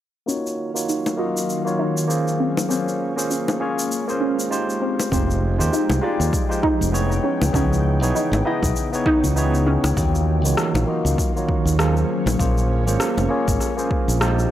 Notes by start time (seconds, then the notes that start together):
0.26 D#3 F#3 A#3 C#4 D#4 F4 F#4 C#5 F5, shaker
0.47 shaker
0.74 A#3 D#4 F4 F#4 C#5, shaker
0.89 D#4, shaker
1.06 high bongo, shaker
1.17 A#3 D#4 F4 F#4 D#5
1.37 shaker
1.50 shaker
1.65 A#3 D#4 F4 F#4 C#5, shaker
1.79 D#4
1.97 shaker
2.07 A#3 C#4 F4 G#4 C5, shaker
2.28 shaker
2.40 G#3 A#3 C4
2.57 high bongo, shaker
2.69 A#3 C4 C#4 F4 G#4 C5, shaker
2.88 shaker
3.16 A#3 C#4 F4 G#4 C5, shaker
3.31 C#4, shaker
3.48 high bongo, shaker
3.60 A#3 C#4 F4 G#4 C#5
3.79 shaker
3.92 shaker
4.07 A#3 C#4 F4 G#4 C5, shaker
4.21 C#4
4.40 shaker
4.50 G#3 D#4 F4 G4 C5, shaker
4.70 shaker
4.82 F3 G#3 C4 G5
5.00 high bongo, shaker
5.11 F1 G#3 C4 D#4 F4 G4 C5, kick, shaker
5.31 shaker
5.58 D#2 G#3 D#4 F4 G4 C5, shaker
5.73 D#4, shaker
5.89 C2, high bongo, shaker
6.01 G#3 D#4 F4 G4 D5
6.20 D#2, shaker
6.33 kick, shaker
6.49 G#3 D#4 F4 G4 C5, shaker
6.63 D#4, kick
6.81 F1, shaker
6.92 B3 D#4 E4 G#4 C#5, shaker
7.12 shaker
7.24 C#3 E3 B3 C#4
7.42 C#2, high bongo, shaker
7.53 C#2 B3 C#4 D#4 E4 G#4 C#5, kick, shaker
7.73 shaker
8.01 B1 B3 D#4 E4 G#4 C#5, shaker
8.15 D#4, shaker
8.32 G#1, high bongo, shaker
8.45 B3 D#4 E4 G#4 D#5
8.62 B1, kick, shaker
8.76 shaker
8.93 B3 D#4 E4 G#4 C#5, shaker
9.06 D#4, kick
9.24 C#2, shaker
9.36 B3 D#4 E4 G#4 C#5, shaker
9.54 shaker
9.67 C#4
9.84 C#2, high bongo, shaker
9.96 D#2 D#3 F#3 A#3 C#4 D#4 F4 F#4 C#5 F5, kick, shaker
10.15 shaker
10.44 C#2 A#3 D#4 F4 F#4 C#5, shaker
10.57 cross-stick, shaker
10.74 A#1, high bongo, shaker
10.87 A#3 D#4 F4 F#4 D#5
11.05 C#2, shaker
11.18 kick, shaker
11.36 A#3 D#4 F4 F#4 C#5, shaker
11.49 kick
11.65 D#2, shaker
11.79 A#3 C#4 F4 G#4 C5, cross-stick, shaker
11.97 shaker
12.08 G#3 A#3
12.26 A#1, high bongo, shaker
12.39 A#1 A#3 C#4 F4 G#4 C5, kick, shaker
12.58 shaker
12.86 G#1 A#3 C#4 F4 G#4 C5, shaker
13.00 cross-stick, shaker
13.17 F1, high bongo, shaker
13.29 A#3 C#4 F4 G#4 C#5
13.48 G#1, kick, shaker
13.60 cross-stick, shaker
13.77 A#3 C#4 F4 G#4 C5, shaker
13.91 kick
14.08 A#1, shaker
14.19 G#3 D#4 F4 G4 C5, cross-stick, shaker
14.39 shaker